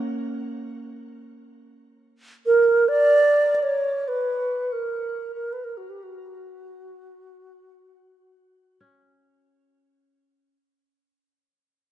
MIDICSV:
0, 0, Header, 1, 3, 480
1, 0, Start_track
1, 0, Tempo, 500000
1, 11434, End_track
2, 0, Start_track
2, 0, Title_t, "Xiao"
2, 0, Program_c, 0, 77
2, 2362, Note_on_c, 0, 70, 84
2, 2769, Note_on_c, 0, 74, 98
2, 2783, Note_off_c, 0, 70, 0
2, 3405, Note_off_c, 0, 74, 0
2, 3405, Note_on_c, 0, 74, 62
2, 3482, Note_on_c, 0, 73, 79
2, 3496, Note_off_c, 0, 74, 0
2, 3917, Note_on_c, 0, 71, 76
2, 3931, Note_off_c, 0, 73, 0
2, 4536, Note_on_c, 0, 70, 74
2, 4550, Note_off_c, 0, 71, 0
2, 5128, Note_off_c, 0, 70, 0
2, 5132, Note_on_c, 0, 70, 72
2, 5307, Note_on_c, 0, 71, 75
2, 5322, Note_off_c, 0, 70, 0
2, 5417, Note_on_c, 0, 70, 78
2, 5432, Note_off_c, 0, 71, 0
2, 5542, Note_on_c, 0, 66, 67
2, 5557, Note_off_c, 0, 70, 0
2, 5658, Note_on_c, 0, 67, 67
2, 5672, Note_off_c, 0, 66, 0
2, 5792, Note_on_c, 0, 66, 69
2, 5806, Note_off_c, 0, 67, 0
2, 8428, Note_off_c, 0, 66, 0
2, 11434, End_track
3, 0, Start_track
3, 0, Title_t, "Kora"
3, 0, Program_c, 1, 46
3, 0, Note_on_c, 1, 58, 58
3, 0, Note_on_c, 1, 61, 49
3, 5731, Note_off_c, 1, 58, 0
3, 5752, Note_off_c, 1, 61, 0
3, 8453, Note_on_c, 1, 61, 47
3, 10122, Note_off_c, 1, 61, 0
3, 11434, End_track
0, 0, End_of_file